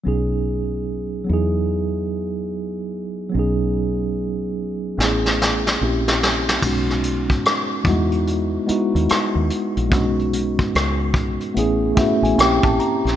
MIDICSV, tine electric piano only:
0, 0, Header, 1, 2, 480
1, 0, Start_track
1, 0, Key_signature, 5, "major"
1, 0, Tempo, 821918
1, 33, Time_signature, 4, 2, 24, 8
1, 7687, End_track
2, 0, Start_track
2, 0, Title_t, "Tine electric piano"
2, 0, Program_c, 0, 4
2, 21, Note_on_c, 0, 54, 58
2, 28, Note_on_c, 0, 59, 50
2, 31, Note_on_c, 0, 61, 46
2, 41, Note_on_c, 0, 63, 49
2, 47, Note_on_c, 0, 68, 66
2, 144, Control_c, 0, 64, 127
2, 719, Note_off_c, 0, 54, 0
2, 726, Note_on_c, 0, 54, 60
2, 732, Note_off_c, 0, 59, 0
2, 739, Note_on_c, 0, 59, 49
2, 748, Note_off_c, 0, 63, 0
2, 752, Note_off_c, 0, 61, 0
2, 755, Note_on_c, 0, 63, 51
2, 759, Control_c, 0, 64, 0
2, 760, Note_off_c, 0, 68, 0
2, 769, Note_on_c, 0, 64, 48
2, 780, Note_on_c, 0, 68, 66
2, 877, Control_c, 0, 64, 127
2, 1916, Note_off_c, 0, 54, 0
2, 1922, Note_off_c, 0, 59, 0
2, 1923, Note_on_c, 0, 54, 64
2, 1930, Note_off_c, 0, 63, 0
2, 1937, Note_off_c, 0, 64, 0
2, 1938, Note_on_c, 0, 59, 55
2, 1943, Note_off_c, 0, 68, 0
2, 1951, Note_on_c, 0, 61, 55
2, 1959, Control_c, 0, 64, 0
2, 1966, Note_on_c, 0, 63, 54
2, 1982, Note_on_c, 0, 68, 67
2, 2050, Control_c, 0, 64, 127
2, 2878, Note_off_c, 0, 54, 0
2, 2886, Note_off_c, 0, 59, 0
2, 2892, Note_off_c, 0, 61, 0
2, 2900, Note_off_c, 0, 63, 0
2, 2906, Note_on_c, 0, 57, 62
2, 2908, Note_off_c, 0, 68, 0
2, 2910, Note_on_c, 0, 59, 60
2, 2916, Note_on_c, 0, 60, 44
2, 2920, Control_c, 0, 64, 0
2, 2923, Note_on_c, 0, 64, 55
2, 2933, Note_on_c, 0, 68, 65
2, 2954, Note_on_c, 0, 61, 56
2, 2961, Note_off_c, 0, 60, 0
2, 3021, Control_c, 0, 64, 127
2, 3383, Note_on_c, 0, 58, 60
2, 3389, Note_off_c, 0, 57, 0
2, 3389, Note_on_c, 0, 60, 54
2, 3390, Note_off_c, 0, 61, 0
2, 3391, Note_off_c, 0, 59, 0
2, 3395, Note_off_c, 0, 64, 0
2, 3397, Note_on_c, 0, 61, 52
2, 3401, Control_c, 0, 64, 0
2, 3402, Note_on_c, 0, 64, 60
2, 3403, Note_off_c, 0, 68, 0
2, 3411, Note_on_c, 0, 67, 60
2, 3490, Control_c, 0, 64, 127
2, 3865, Note_on_c, 0, 56, 66
2, 3868, Note_off_c, 0, 58, 0
2, 3871, Note_off_c, 0, 60, 0
2, 3873, Note_on_c, 0, 59, 61
2, 3875, Note_off_c, 0, 61, 0
2, 3877, Note_off_c, 0, 64, 0
2, 3881, Control_c, 0, 64, 0
2, 3882, Note_off_c, 0, 67, 0
2, 3882, Note_on_c, 0, 61, 64
2, 3888, Note_on_c, 0, 63, 61
2, 3893, Note_on_c, 0, 66, 75
2, 3967, Control_c, 0, 64, 127
2, 4576, Note_on_c, 0, 55, 66
2, 4578, Note_off_c, 0, 59, 0
2, 4585, Note_off_c, 0, 63, 0
2, 4585, Note_on_c, 0, 59, 71
2, 4589, Note_off_c, 0, 56, 0
2, 4592, Note_on_c, 0, 63, 71
2, 4597, Note_off_c, 0, 61, 0
2, 4599, Note_off_c, 0, 66, 0
2, 4599, Note_on_c, 0, 64, 75
2, 4601, Control_c, 0, 64, 0
2, 4606, Note_on_c, 0, 66, 78
2, 4617, Note_on_c, 0, 56, 74
2, 4631, Note_off_c, 0, 55, 0
2, 4710, Control_c, 0, 64, 127
2, 5025, Note_off_c, 0, 59, 0
2, 5029, Note_off_c, 0, 63, 0
2, 5033, Note_off_c, 0, 64, 0
2, 5036, Note_off_c, 0, 66, 0
2, 5041, Note_off_c, 0, 56, 0
2, 5060, Note_on_c, 0, 56, 74
2, 5065, Note_on_c, 0, 59, 69
2, 5073, Note_on_c, 0, 63, 68
2, 5079, Note_on_c, 0, 64, 63
2, 5090, Note_on_c, 0, 66, 80
2, 5721, Note_off_c, 0, 56, 0
2, 5724, Note_off_c, 0, 59, 0
2, 5728, Note_off_c, 0, 63, 0
2, 5731, Note_off_c, 0, 64, 0
2, 5736, Note_off_c, 0, 66, 0
2, 5778, Note_on_c, 0, 56, 75
2, 5786, Note_on_c, 0, 59, 61
2, 5790, Note_on_c, 0, 61, 64
2, 5798, Note_on_c, 0, 62, 53
2, 5799, Control_c, 0, 64, 0
2, 5806, Note_on_c, 0, 66, 84
2, 5838, Note_on_c, 0, 63, 64
2, 5842, Note_off_c, 0, 62, 0
2, 5908, Control_c, 0, 64, 127
2, 6659, Note_off_c, 0, 56, 0
2, 6663, Note_off_c, 0, 59, 0
2, 6664, Note_off_c, 0, 61, 0
2, 6672, Note_off_c, 0, 66, 0
2, 6689, Note_off_c, 0, 63, 0
2, 6741, Note_on_c, 0, 57, 82
2, 6746, Note_on_c, 0, 59, 72
2, 6755, Note_on_c, 0, 61, 67
2, 6759, Control_c, 0, 64, 0
2, 6760, Note_on_c, 0, 64, 67
2, 6768, Note_on_c, 0, 68, 82
2, 6848, Control_c, 0, 64, 127
2, 6965, Note_off_c, 0, 57, 0
2, 6968, Note_off_c, 0, 59, 0
2, 6972, Note_off_c, 0, 61, 0
2, 6975, Note_off_c, 0, 64, 0
2, 6979, Note_off_c, 0, 68, 0
2, 6981, Note_on_c, 0, 57, 80
2, 6987, Note_on_c, 0, 59, 70
2, 6995, Note_on_c, 0, 61, 68
2, 6996, Note_on_c, 0, 76, 59
2, 7003, Note_on_c, 0, 64, 66
2, 7009, Note_on_c, 0, 66, 83
2, 7131, Note_off_c, 0, 76, 0
2, 7145, Note_on_c, 0, 80, 61
2, 7217, Note_on_c, 0, 58, 76
2, 7225, Note_off_c, 0, 61, 0
2, 7226, Note_on_c, 0, 60, 72
2, 7227, Note_off_c, 0, 57, 0
2, 7229, Note_off_c, 0, 80, 0
2, 7230, Note_off_c, 0, 59, 0
2, 7232, Note_on_c, 0, 61, 63
2, 7234, Note_off_c, 0, 64, 0
2, 7236, Note_on_c, 0, 79, 58
2, 7240, Control_c, 0, 64, 0
2, 7241, Note_off_c, 0, 66, 0
2, 7241, Note_on_c, 0, 64, 66
2, 7248, Note_on_c, 0, 67, 89
2, 7324, Control_c, 0, 64, 127
2, 7372, Note_off_c, 0, 79, 0
2, 7384, Note_on_c, 0, 81, 54
2, 7468, Note_off_c, 0, 81, 0
2, 7473, Note_on_c, 0, 82, 60
2, 7661, Note_off_c, 0, 58, 0
2, 7666, Note_off_c, 0, 60, 0
2, 7669, Note_off_c, 0, 61, 0
2, 7673, Note_off_c, 0, 64, 0
2, 7677, Note_off_c, 0, 67, 0
2, 7687, Note_off_c, 0, 82, 0
2, 7687, End_track
0, 0, End_of_file